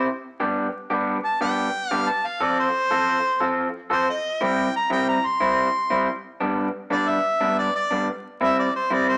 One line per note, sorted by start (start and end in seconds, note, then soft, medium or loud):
0.00 0.20 C5 loud
0.40 0.67 G3 medium
0.40 0.67 B3 medium
0.40 0.67 D4 medium
0.40 0.67 G4 medium
0.90 1.17 G3 medium
0.90 1.17 B3 medium
0.90 1.17 D4 medium
0.90 1.17 G4 medium
1.25 1.40 A5 medium
1.41 1.68 G3 medium
1.41 1.67 B3 medium
1.41 1.67 D4 medium
1.41 1.67 G4 medium
1.41 1.91 G5 loud
1.91 2.08 G3 medium
1.91 2.08 B3 medium
1.91 2.07 D4 medium
1.91 2.07 G4 medium
1.91 2.11 F5 loud
2.09 2.28 A5 medium
2.26 2.44 F5 medium
2.40 2.68 F3 medium
2.40 2.67 C4 medium
2.40 2.67 F4 medium
2.40 2.67 A4 medium
2.40 2.58 D5 medium
2.60 3.55 C5 loud
2.91 3.18 F3 medium
2.91 3.18 C4 medium
2.91 3.17 F4 medium
2.91 3.17 A4 medium
3.41 3.67 F3 medium
3.41 3.67 C4 medium
3.41 3.67 F4 medium
3.41 3.67 A4 medium
3.90 4.07 F3 medium
3.90 4.07 C4 medium
3.90 4.07 F4 medium
3.90 4.07 A4 medium
3.90 4.07 C5 loud
4.10 4.45 D#5 medium
4.41 4.68 C3 medium
4.41 4.68 G3 medium
4.41 4.67 C4 medium
4.41 4.67 E4 medium
4.41 4.74 G5 medium
4.76 4.91 A#5 loud
4.90 5.18 C3 medium
4.90 5.17 G3 medium
4.90 5.17 C4 medium
4.90 5.17 E4 medium
4.90 5.08 G5 medium
5.09 5.28 A#5 medium
5.26 6.22 C6 loud
5.40 5.68 C3 medium
5.40 5.67 G3 medium
5.40 5.67 C4 medium
5.40 5.67 E4 loud
5.90 6.08 C3 medium
5.90 6.07 G3 medium
5.90 6.07 C4 medium
5.90 6.07 E4 loud
6.40 6.68 G2 medium
6.40 6.68 G3 medium
6.40 6.67 B3 medium
6.40 6.67 D4 loud
6.90 7.18 G2 medium
6.90 7.18 G3 medium
6.90 7.17 B3 medium
6.90 7.17 D4 medium
6.90 7.10 D5 medium
7.09 7.57 E5 loud
7.41 7.68 G2 medium
7.41 7.68 G3 medium
7.41 7.68 B3 medium
7.41 7.67 D4 loud
7.59 7.74 D5 loud
7.76 8.07 D5 loud
7.91 8.08 G2 medium
7.91 8.08 G3 medium
7.91 8.08 B3 medium
7.91 8.07 D4 medium
8.41 8.68 C3 medium
8.41 8.68 G3 medium
8.41 8.68 C4 medium
8.41 8.67 E4 medium
8.41 8.59 E5 loud
8.59 8.75 D5 medium
8.76 8.94 C5 medium
8.90 9.18 C3 medium
8.90 9.18 G3 medium
8.90 9.18 C4 medium
8.90 9.17 E4 medium
8.90 9.08 D5 medium
9.09 9.18 C5 medium